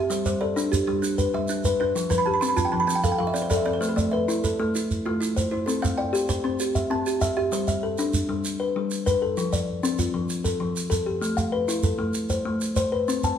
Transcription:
Already playing: G4 E5
0.10 G3 C5, shekere
0.26 G3 C5, shekere
0.41 A4 D5
0.56 D4, shekere
0.72 G4, shekere
0.87 G3 G4
1.02 D4, shekere
1.18 B4, shekere
1.34 G3 E5
1.48 D4, shekere
1.64 B4, shekere
1.80 D4 B4
1.96 F3, shekere
2.10 F3 B4, shekere
2.18 B5
2.26 G4 A5
2.34 B5
2.41 C4 C6, shekere
2.49 B5
2.57 F4 A5, shekere
2.65 G5
2.72 F3 A5
2.80 B5
2.87 C4 A5, shekere
2.95 G5
3.04 A4 F5, shekere
3.12 G5
3.18 F3 F5
3.27 E5
3.34 C4 D5, shekere
3.42 C5
3.50 A4 D5, shekere
3.57 E5
3.65 C4 A4 D5
3.73 C5
3.81 A3 B4, shekere
3.89 A4
3.96 A3 D5, shekere
4.11 B4 E5
4.28 E4, shekere
4.44 A4, shekere
4.59 A3 A4
4.75 E4, shekere
4.91 shekere
5.06 A3 F4
5.21 E4, shekere
5.36 C5, shekere
5.51 E4 C5
5.66 C4 A4, shekere
5.82 C4 F5, shekere
5.97 D5 G5
6.13 G4, shekere
6.29 C5, shekere
6.44 C4 C5
6.60 G4, shekere
6.75 E5, shekere
6.90 C4 A5
7.06 G4, shekere
7.21 E5, shekere
7.37 G4 E5
7.52 G3 C5, shekere
7.68 E5, shekere
7.83 A4
7.98 D4, shekere
8.14 shekere
8.29 G3
8.45 shekere
8.60 B4
8.76 G3
8.91 shekere
9.06 B4, shekere
9.22 A4
9.37 F3, shekere
9.53 D5, shekere
9.83 C4, shekere
9.99 F4, shekere
10.14 F3
10.29 shekere
10.44 A4, shekere
10.60 F3
10.76 shekere
10.90 A4, shekere
11.06 G4
11.21 A3, shekere
11.37 F5, shekere
11.52 B4
11.68 E4, shekere
11.83 A4, shekere
11.99 A3
12.14 shekere
12.30 C5, shekere
12.45 A3
12.61 shekere
12.76 C5, shekere
12.92 B4
13.08 C4, shekere
13.23 A5, shekere

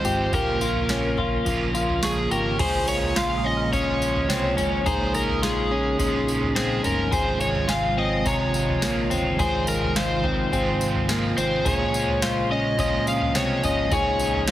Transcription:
Already playing: D#3 F3 G#3 C4 F4 C5
0.05 G#1 G4, floor tom, tambourine
0.32 A#1 A#2 C#3 F3 A#3 C#4 F4 G4 A#4, kick, floor tom, tambourine
0.61 C#4 F4, tambourine
0.66 A#3
0.76 floor tom
0.89 C#4, snare, tambourine
1.18 F4, kick, floor tom
1.45 A#1 F3 A#3 C#4, kick, floor tom, tambourine
1.50 F4
1.75 F4, tambourine
1.89 floor tom
2.02 F3 A#3 C#4 G#4 C#6, snare, tambourine
2.07 F4
2.31 G#1 G4 A#4, tambourine
2.58 A#1 A#2 C#3 F3 G#3 A#3 F4 G#4 C5, kick, floor tom, crash, tambourine
2.62 G#3 C#4 F4
2.88 C#5, tambourine
3.02 floor tom
3.16 F4 F5 C6, snare, tambourine
3.37 D#6
3.44 C#4 D#5
3.57 F6
3.71 F3 G#3 C#4 C#5, kick, floor tom, tambourine
3.76 F4
4.02 tambourine
4.16 floor tom
4.29 C2 F3 G#3 C4 C#4, snare, tambourine
4.33 F4
4.57 G#1 C#4, floor tom, tambourine
4.85 A#1 A#2 F3 G#3 C#4 D#4 F4 G#4 C5 A#5, kick, floor tom, tambourine
5.07 D#6
5.14 C#4 F4 A#4, tambourine
5.19 G#3
5.29 floor tom
5.42 F4 G#4, snare, tambourine
5.71 C#4
5.98 A#1 F3 G#3 C#4, kick, floor tom, tambourine
6.03 F4
6.28 tambourine
6.43 floor tom
6.55 F3 G#3 C4 C#4 G#4, snare, tambourine
6.60 F4
6.83 G1 C#4 A#4, floor tom, tambourine
7.11 G#1 G#2 C3 D#3 F3 G#3 C4 F4 G#4 C5, kick, floor tom, tambourine
7.39 G#3 C4 F4 C#5, tambourine
7.44 F3
7.55 floor tom
7.68 F4 F5 G#5, snare, tambourine
7.97 C4 D#5
8.25 C3 F3 G#3 C#5 A#5, kick, floor tom, tambourine
8.30 F4
8.54 tambourine
8.69 floor tom
8.81 A#1 F3 G#3 A#3, snare, tambourine
8.87 F4
9.10 G1 C4, floor tom, tambourine
9.37 G#1 G#2 D#3 F3 G#4 C5, kick, floor tom, tambourine
9.41 G#3 C4 F4
9.67 A#4, tambourine
9.83 floor tom
9.96 F4 C5, snare, tambourine
10.24 C4, kick, floor tom
10.50 G#1 F3 G#3 C4 G#5, kick, floor tom, tambourine
10.55 F4
10.81 tambourine
10.95 floor tom
11.08 F3 G#3 A#3 C4, snare, tambourine
11.13 F4
11.37 G#1 C4 C5, tambourine
11.65 A#1 A#2 C#3 F3 G#3 A#3 C#4 F4 G#4 C#5, kick, floor tom, tambourine
11.93 C#4 F4, tambourine
11.98 G#3
12.08 floor tom
12.22 F4 C5, snare, tambourine
12.51 C#4 D#5
12.77 F3 G#3 C#4 D#5 D#6, kick, floor tom, tambourine
12.82 F4
13.07 F5, tambourine
13.21 floor tom
13.34 C2 F3 G#3 C4 C#4 C#5, snare, tambourine
13.39 F4
13.63 G#1 C#4 D#5, floor tom, tambourine
13.90 A#1 A#2 F3 D#4 G#4 C#5, kick, floor tom, tambourine
13.95 G#3 C#4 F4
14.19 tambourine
14.34 floor tom
14.47 snare, tambourine

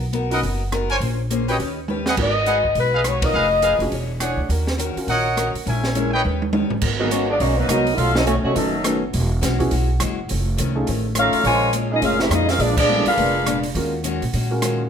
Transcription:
Already playing: B1
0.13 B3 D#4 F#4 A#4, closed hi-hat
0.30 C#4 D#4 F#4 A#4 B4 D#5 F#5, open hi-hat
0.42 F#1 B3 D#4 F#4 A#4, open hi-hat
0.72 B3 D#4 F#4 A#4, cross-stick, closed hi-hat
0.90 A#4 C5 C#5 G#5, open hi-hat
1.00 A#1 A#3 C#4 G#4 C5, open hi-hat
1.30 A#3 C#4 G#4 C5, closed hi-hat
1.48 C#4 F#4 G4 B4 C#5 D#5 G5, open hi-hat
1.59 D#2 D#3 C#4 G4 B4, open hi-hat
1.88 D#3 C#4 G4 B4, high tom
2.06 G#4 B4 D#5 F#5, snare
2.17 G#1 G#3 B3 D#4 F#4 A#4 B4, kick, crash
2.22 D#5
2.46 G#3 D#4 F#4 G#4 B4 D#5 F#5, closed hi-hat
2.64 kick
2.75 B1 G#3 D#4 F#4 B4, open hi-hat
2.79 B4
2.93 G#4 B4 D#5 F5
3.04 G#3 D#4 F#4 B4 C#5, cross-stick, closed hi-hat
3.22 B3 D#4 F4 A#4 D#5, kick, ride
3.33 F1 F3 D#4 G#4 B4 D#5 F5
3.62 F3 D#4 G#4 B4 D#5 F5, closed hi-hat
3.79 F1 C#4 D4 F#4 G#4, open hi-hat
3.91 E1 E3 D4 G#4 C#5, open hi-hat
4.20 E3 D4 G#4 C#5 D5 F#5, cross-stick, closed hi-hat
4.37 D2
4.49 D#2 D#3 C#4 F#4 A#4, open hi-hat
4.67 snare
4.78 D#3 C#4 F#4 A#4, closed hi-hat
4.96 C#4 F4 F#4 A#4, muted upright bass stroke, open hi-hat
5.07 A#1 D#3 C#4 F#4 A#4 C#5 D#5 F#5, open hi-hat
5.36 D#3 C#4 F#4 A#4, cross-stick, closed hi-hat
5.55 muted upright bass stroke, open hi-hat
5.65 A#1 A#2 G#3 C#4 E4 A#4 C#5 E5 G#5, open hi-hat
5.84 snare
5.94 A#2 G#3 C#4 E4 G#4 A#4, closed hi-hat
6.13 B4 C#5 D#5 G5
6.25 D#2 D#3 C#4 G4 B4, high tom
6.42 high tom
6.53 D#3 C#4 G4 B4, high tom
6.70 muted upright bass stroke, floor tom
6.82 G#1 G#3 B3 F#4 A#4, kick, crash
6.99 D#3 F#3 G#3 A#3 B3 D#4 F#4 A#4 B4
7.11 G#3 A#3 B3 C#4 D#4 F#4 A#4 C#5, closed hi-hat
7.29 B3 D4 F4 G#4 D5
7.40 B1 G#3 A#3 B3 C#4 D#4 F#4 A#4 C#5, open hi-hat
7.57 D#3 F#3 A#3 B3 D#4 B4
7.68 C2 F#3 G#3 B3 D#4 F#4 A#4 D#5, cross-stick, closed hi-hat
7.87 open hi-hat
7.97 B1 B2 D#3 A3 C#4 F4 F#4 A4 F5, open hi-hat
8.15 F#3 A3 C#4 D#4 F#4 A4 D#5, snare
8.25 B2 D#3 F#3 A3 C#4 D#4 F#4 C#5, closed hi-hat
8.43 C2 F#3 A3 C#4 D#4 F#4 C#5
8.53 F#1 B2 D#3 F#3 A3 B3 C#4 D#4 F#4 A4, open hi-hat
8.84 B2 D#3 A3 B3 C#4 D#4 F#4 B4, cross-stick, closed hi-hat
9.13 E1 E3 G#3 C#4 F#4, open hi-hat
9.41 B1 E3 G#3 C#4 F#4, snare, closed hi-hat
9.59 B3 C#4 E4 F#4 G#4, kick, open hi-hat
9.70 B1 E3 G#3 C#4 F#4, open hi-hat
10.00 F#1 E3 G#3 C#4 F#4, cross-stick, closed hi-hat
10.28 F1 F2 D#3 A3 C#4, open hi-hat
10.57 C2 F2 D#3 A3 C#4, closed hi-hat
10.75 A3 C#4 D#4 F4 G#4
10.87 A1 F2 D#3 A3 C#4, open hi-hat
11.15 F2 D#3 A3 C#4 F4, cross-stick, closed hi-hat
11.19 D#4 A4 C#5 F5
11.33 muted upright bass stroke, open hi-hat
11.44 A#1 A#2 C#3 F3 G#3 C#4 F4 A#4 C#5 G#5, open hi-hat
11.73 A#2 F3 G#3 C#4, closed hi-hat
11.91 G#3 A#3 B3 C#4 D#4 F4 G#4 D#5
12.01 F1 A#2 F3 G#3 C#4 F4 G#4 A#4 F5, open hi-hat
12.19 C#4 E4 G4 A#4 E5, snare
12.29 F2 A#2 F3 G#3 C#4 D#4 F4 G#4, cross-stick, closed hi-hat
12.33 B3 D#5
12.49 G#3 C#4 F4 G#4 A#4 F5, snare, open hi-hat
12.58 A#1 A#2 F3 G#3 B3 D4 F4 G#4 D5, open hi-hat
12.77 F3 G#3 B3 D4 F4 G#4 D5, kick, crash
12.87 A#2 G3 G#3 A#3 B3 C#4 D4 E4 A4
13.06 G#3 B3 D4 F4 G#4 A#4 B4 F5, muted upright bass stroke, open hi-hat
13.16 F1 A#2 G#3 B3 D4, open hi-hat
13.45 A#2 G#3 B3 D4, cross-stick, closed hi-hat
13.63 open hi-hat
13.75 D#2 D#3 G#3 C#4 F4 F#4 A#4, open hi-hat
14.04 D#3 G#3 C#4 F#4, closed hi-hat
14.22 A#2, open hi-hat
14.33 A#2 D#3 G#3 C#4 F#4, open hi-hat
14.50 G#3 C#4 F4 F#4 A#4
14.62 D#3 G#3 C#4 F#4, cross-stick, closed hi-hat

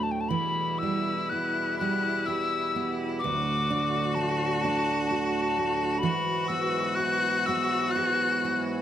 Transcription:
Already playing: D2 A2 F#3 A3 D4 F#4
0.03 A5
0.11 G5
0.21 A5
0.29 E2 E3 E4 B5
0.34 B2 G3
0.79 E6
0.83 G3
1.30 B3 F#6
1.78 G3 F#6
2.26 G4 E6
2.76 B3
3.19 F#4 D6
3.23 D2 A2 F#3
3.70 D4
4.15 A3 A5
4.60 A5
4.65 D4
5.06 A5
5.11 F#4
5.58 A3
5.98 F#4 B5
6.03 G#2 E3
6.48 B3 E6
6.95 F#6
7.00 E4
7.46 B3 E6
7.58 E6
7.91 F#6
7.96 G#4
8.45 E4

